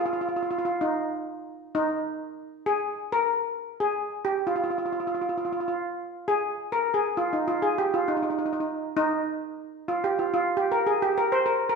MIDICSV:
0, 0, Header, 1, 2, 480
1, 0, Start_track
1, 0, Key_signature, -3, "major"
1, 0, Tempo, 452489
1, 1127, Time_signature, 4, 2, 24, 8
1, 12468, End_track
2, 0, Start_track
2, 0, Title_t, "Steel pan"
2, 0, Program_c, 0, 114
2, 59, Note_on_c, 0, 65, 72
2, 127, Note_off_c, 0, 65, 0
2, 140, Note_on_c, 0, 65, 59
2, 211, Note_off_c, 0, 65, 0
2, 224, Note_on_c, 0, 65, 62
2, 289, Note_off_c, 0, 65, 0
2, 302, Note_on_c, 0, 65, 55
2, 374, Note_off_c, 0, 65, 0
2, 387, Note_on_c, 0, 65, 68
2, 442, Note_off_c, 0, 65, 0
2, 454, Note_on_c, 0, 65, 57
2, 524, Note_off_c, 0, 65, 0
2, 537, Note_on_c, 0, 65, 67
2, 609, Note_off_c, 0, 65, 0
2, 621, Note_on_c, 0, 65, 67
2, 679, Note_off_c, 0, 65, 0
2, 692, Note_on_c, 0, 65, 76
2, 789, Note_off_c, 0, 65, 0
2, 861, Note_on_c, 0, 63, 80
2, 1552, Note_off_c, 0, 63, 0
2, 1855, Note_on_c, 0, 63, 113
2, 2299, Note_off_c, 0, 63, 0
2, 2825, Note_on_c, 0, 68, 102
2, 3265, Note_off_c, 0, 68, 0
2, 3315, Note_on_c, 0, 70, 115
2, 4033, Note_on_c, 0, 68, 100
2, 4044, Note_off_c, 0, 70, 0
2, 4505, Note_on_c, 0, 67, 96
2, 4517, Note_off_c, 0, 68, 0
2, 4610, Note_off_c, 0, 67, 0
2, 4739, Note_on_c, 0, 65, 89
2, 4812, Note_off_c, 0, 65, 0
2, 4835, Note_on_c, 0, 65, 62
2, 4899, Note_off_c, 0, 65, 0
2, 4921, Note_on_c, 0, 65, 64
2, 4976, Note_off_c, 0, 65, 0
2, 4989, Note_on_c, 0, 65, 57
2, 5056, Note_off_c, 0, 65, 0
2, 5073, Note_on_c, 0, 65, 59
2, 5137, Note_off_c, 0, 65, 0
2, 5151, Note_on_c, 0, 65, 55
2, 5212, Note_off_c, 0, 65, 0
2, 5225, Note_on_c, 0, 65, 57
2, 5292, Note_off_c, 0, 65, 0
2, 5303, Note_on_c, 0, 65, 52
2, 5370, Note_off_c, 0, 65, 0
2, 5382, Note_on_c, 0, 65, 65
2, 5446, Note_off_c, 0, 65, 0
2, 5460, Note_on_c, 0, 65, 55
2, 5519, Note_off_c, 0, 65, 0
2, 5532, Note_on_c, 0, 65, 60
2, 5601, Note_off_c, 0, 65, 0
2, 5613, Note_on_c, 0, 65, 54
2, 5681, Note_off_c, 0, 65, 0
2, 5702, Note_on_c, 0, 65, 61
2, 5768, Note_off_c, 0, 65, 0
2, 5781, Note_on_c, 0, 65, 57
2, 5847, Note_off_c, 0, 65, 0
2, 5862, Note_on_c, 0, 65, 60
2, 5924, Note_off_c, 0, 65, 0
2, 5944, Note_on_c, 0, 65, 57
2, 6008, Note_off_c, 0, 65, 0
2, 6025, Note_on_c, 0, 65, 64
2, 6088, Note_off_c, 0, 65, 0
2, 6661, Note_on_c, 0, 68, 107
2, 7132, Note_on_c, 0, 70, 105
2, 7150, Note_off_c, 0, 68, 0
2, 7362, Note_on_c, 0, 68, 101
2, 7378, Note_off_c, 0, 70, 0
2, 7589, Note_off_c, 0, 68, 0
2, 7609, Note_on_c, 0, 65, 92
2, 7774, Note_on_c, 0, 63, 82
2, 7775, Note_off_c, 0, 65, 0
2, 7931, Note_on_c, 0, 65, 87
2, 7937, Note_off_c, 0, 63, 0
2, 8087, Note_on_c, 0, 68, 94
2, 8095, Note_off_c, 0, 65, 0
2, 8253, Note_off_c, 0, 68, 0
2, 8257, Note_on_c, 0, 67, 93
2, 8403, Note_off_c, 0, 67, 0
2, 8422, Note_on_c, 0, 65, 86
2, 8572, Note_on_c, 0, 63, 81
2, 8580, Note_off_c, 0, 65, 0
2, 8647, Note_off_c, 0, 63, 0
2, 8664, Note_on_c, 0, 63, 61
2, 8714, Note_off_c, 0, 63, 0
2, 8727, Note_on_c, 0, 63, 69
2, 8794, Note_off_c, 0, 63, 0
2, 8807, Note_on_c, 0, 63, 62
2, 8883, Note_off_c, 0, 63, 0
2, 8896, Note_on_c, 0, 63, 61
2, 8959, Note_off_c, 0, 63, 0
2, 8972, Note_on_c, 0, 63, 60
2, 9035, Note_off_c, 0, 63, 0
2, 9047, Note_on_c, 0, 63, 65
2, 9113, Note_off_c, 0, 63, 0
2, 9126, Note_on_c, 0, 63, 59
2, 9200, Note_off_c, 0, 63, 0
2, 9511, Note_on_c, 0, 63, 111
2, 9965, Note_off_c, 0, 63, 0
2, 10484, Note_on_c, 0, 65, 89
2, 10650, Note_off_c, 0, 65, 0
2, 10650, Note_on_c, 0, 67, 91
2, 10797, Note_off_c, 0, 67, 0
2, 10809, Note_on_c, 0, 65, 72
2, 10952, Note_off_c, 0, 65, 0
2, 10965, Note_on_c, 0, 65, 96
2, 11211, Note_on_c, 0, 67, 92
2, 11213, Note_off_c, 0, 65, 0
2, 11368, Note_on_c, 0, 70, 99
2, 11373, Note_off_c, 0, 67, 0
2, 11526, Note_on_c, 0, 68, 97
2, 11532, Note_off_c, 0, 70, 0
2, 11691, Note_off_c, 0, 68, 0
2, 11693, Note_on_c, 0, 67, 95
2, 11854, Note_off_c, 0, 67, 0
2, 11855, Note_on_c, 0, 70, 102
2, 12000, Note_off_c, 0, 70, 0
2, 12010, Note_on_c, 0, 72, 105
2, 12156, Note_on_c, 0, 70, 94
2, 12173, Note_off_c, 0, 72, 0
2, 12393, Note_off_c, 0, 70, 0
2, 12406, Note_on_c, 0, 70, 98
2, 12468, Note_off_c, 0, 70, 0
2, 12468, End_track
0, 0, End_of_file